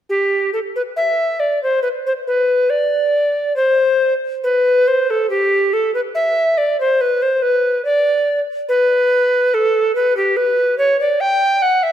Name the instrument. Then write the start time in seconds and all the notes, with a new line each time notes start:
recorder
0.09 G4
0.53 A4
0.76 B4
0.96 E5
1.40 D5
1.63 C5
1.82 B4
2.07 C5
2.27 B4
2.70 D5
3.56 C5
4.44 B4
4.88 C5
5.10 A4
5.30 G4
5.73 A4
5.94 B4
6.15 E5
6.58 D5
6.80 C5
7.01 B4
7.22 C5
7.42 B4
7.85 D5
8.69 B4
9.54 A4
9.95 B4
10.17 G4
10.37 B4
10.78 C#5
11.01 D5
11.20 G5
11.62 F#5
11.83 E5